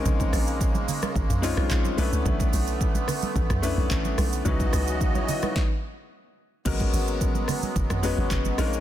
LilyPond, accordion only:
\new Staff \with { instrumentName = "Accordion" } { \clef bass \time 4/4 \key b \lydian \tempo 4 = 109 << { <cis ais>2.~ <cis ais>8 <d b>8~ | <d b>1 | <cis fis' dis''>2 r2 | <fis b>2.~ <fis b>8 <cis ais>8 | } \\ { gis2.~ gis8 a8~ | a1 | e2 r2 | gis1 | } >> }